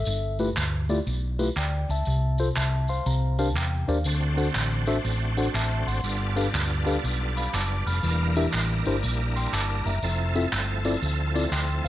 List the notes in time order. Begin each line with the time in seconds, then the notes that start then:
Already playing: A4 E5
0.05 G1 G2, tambourine
0.39 A3 E4 F4 G4 B4, tambourine
0.57 D2, clap, tambourine
0.89 A3 E4 F4 G4 D5, tambourine
1.07 B1, tambourine
1.39 A3 E4 F4 G4 B4, tambourine
1.56 D2 D5 G5, clap, tambourine
1.89 C#2 E5 A5, tambourine
2.05 C2 C3, tambourine
2.38 F4 A4 C5, tambourine
2.56 C2 E5 A5, clap, tambourine
2.88 C5 F5 C6, tambourine
3.06 C2 C3 A#5, tambourine
3.39 D4 G4 A#4 C5 F5 A5, tambourine
3.56 E2 G5, clap, tambourine
3.88 D#2 D4 G4 A#4 C5 D5 F5, tambourine
4.04 D2 D3 A3 C4 D4 F#4 C5, tambourine
4.37 D4 F#4 A4 C5 F#5, tambourine
4.55 A1, clap, tambourine
4.87 D4 F#4 A4 C5 E5, tambourine
5.05 A1, tambourine
5.37 D4 F#4 A4 C5 F#5, tambourine
5.54 A1 E5 A5, clap, tambourine
5.87 G#1 F#5 C6, tambourine
6.04 G1 G2 G3 B3 D4 F4 A4, tambourine
6.36 D4 G4 A4 B4 F5, tambourine
6.54 D2, clap, tambourine
6.86 D4 G4 A4 B4 F5, tambourine
7.04 B1, tambourine
7.37 F5 B5, tambourine
7.54 F#1 F4 D5 A5 D6, clap, tambourine
7.86 F1 A4 F5 B5 F6, tambourine
8.03 E1 E3 G3 A#3 D4 E4 A4, tambourine
8.10 A#4
8.36 D4 E4 G4 A#4 E5, tambourine
8.53 A1, clap, tambourine
8.85 G1 D4 E4 G4 A#4 C5, tambourine
9.03 A#1, tambourine
9.36 G5 C6, tambourine
9.53 G1 A5 D6, clap, tambourine
9.86 F#1 E5 A#5, tambourine
10.02 F1 F3 A3 C4 E4 A4, tambourine
10.35 C4 E4 F4 A4 E5, tambourine
10.52 G1, clap, tambourine
10.84 C4 E4 F4 A4 D5, tambourine
11.02 D2, tambourine
11.35 C4 E4 F4 A4 D5, tambourine
11.52 D2 C4 E4 A4 G5 C6, clap, tambourine
11.84 C#2 F5